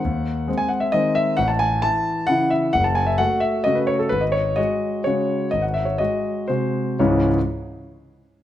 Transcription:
X:1
M:3/4
L:1/16
Q:1/4=130
K:C#m
V:1 name="Grand piano"
f4- f g f e d2 e2 | f a g2 a4 f2 e2 | f a g e f2 e2 d B c A | B d c2 d4 c4 |
d f e c d4 ^B4 | [C,,G,,E,G,CEc]2 z8 z2 |]
V:2 name="Grand piano" clef=bass
D,,4 [G,^B,]4 [D,G,B,]4 | A,,,4 [E,E]4 [C,E,E]4 | F,,,4 [A,F]4 [C,A,F]4 | G,,,4 [G,F]4 [C,G,F]4 |
G,,,4 [G,F]4 [^B,,G,F]4 | z12 |]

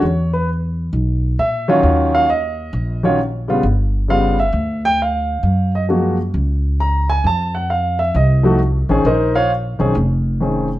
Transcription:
X:1
M:4/4
L:1/8
Q:"Swing" 1/4=133
K:Bbm
V:1 name="Grand piano"
d =B z4 =e d- | d f e3 d z2 | z2 f =e2 =g f2- | f e z4 b a |
=a g f =e _e2 z2 | [EBce] [Fcdf] z6 |]
V:2 name="Grand piano"
z6 z [E,^F,D=F]- | [E,^F,D=F]2 z3 [E,G,DF] z [D,=G,_CF] | z2 [^C,=G,=B,F] z4 z | z2 [F,A,B,G] z4 z |
z4 z [F,=A,EG] z [E,CD_A] | z3 [E,CDA] z2 [E,CDA] z |]
V:3 name="Upright bass" clef=bass
=E,,4 =B,,,2 _B,,2 | E,,4 B,,,4 | =G,,,4 =D,,4 | G,,4 D,,4 |
F,,4 C,,3 =A,,, | B,,,3 _C,, F,,,4 |]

